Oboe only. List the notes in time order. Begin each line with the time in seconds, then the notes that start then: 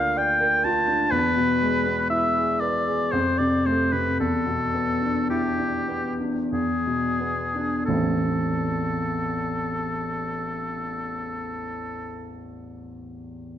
Already playing: F5
0.17 G5
0.64 A5
1.11 B4
2.10 E5
2.60 D5
3.11 C5
3.38 D5
3.66 C5
3.92 B4
4.20 A4
5.30 G4
6.53 G#4
7.85 A4